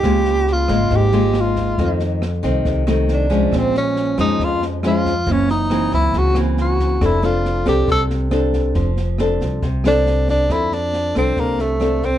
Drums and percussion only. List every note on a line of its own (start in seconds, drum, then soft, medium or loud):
0.03 kick medium
0.03 cross-stick medium
0.03 snare soft
0.25 snare soft
0.47 snare soft
0.68 kick soft
0.68 cross-stick medium
0.68 snare soft
0.90 kick soft
0.90 snare soft
1.12 snare soft
1.34 cross-stick medium
1.34 snare soft
1.56 kick soft
1.56 snare soft
1.78 kick medium
1.78 snare soft
2.00 snare soft
2.22 cross-stick medium
2.22 snare soft
2.43 kick soft
2.43 snare soft
2.65 kick medium
2.65 snare soft
2.87 cross-stick medium
2.87 snare soft
3.08 snare soft
3.31 kick soft
3.31 snare soft
3.52 kick medium
3.52 cross-stick medium
3.52 snare soft
3.74 snare soft
3.96 snare soft
4.18 kick soft
4.18 cross-stick medium
4.18 snare soft
4.40 kick medium
4.40 snare soft
4.62 snare soft
4.83 cross-stick medium
4.83 snare soft
5.05 kick soft
5.05 snare soft
5.27 kick medium
5.27 snare soft
5.48 snare soft
5.70 cross-stick medium
5.70 snare soft
5.92 kick soft
5.92 snare soft
6.13 kick medium
6.13 snare soft
6.35 cross-stick medium
6.35 snare soft
6.57 snare soft
6.79 kick soft
6.79 snare soft
7.01 kick medium
7.01 cross-stick medium
7.01 snare soft
7.23 snare soft
7.45 snare soft
7.66 kick soft
7.66 cross-stick medium
7.66 snare soft
7.88 kick medium
7.88 snare soft
8.10 snare soft
8.31 cross-stick medium
8.31 snare soft
8.53 kick soft
8.53 snare soft
8.74 kick medium
8.74 snare soft
8.97 snare soft
9.18 cross-stick medium
9.18 snare soft
9.40 kick soft
9.40 snare soft
9.62 kick medium
9.62 snare soft
9.84 cross-stick medium
9.84 snare soft
10.06 snare soft
10.28 kick soft
10.28 snare soft
10.49 kick medium
10.49 cross-stick soft
10.49 snare soft
10.72 snare soft
10.93 snare soft
11.15 kick soft
11.15 cross-stick soft
11.15 snare soft
11.37 kick soft
11.37 snare soft
11.59 snare soft
11.81 cross-stick medium
11.81 snare soft
12.02 kick soft
12.02 snare soft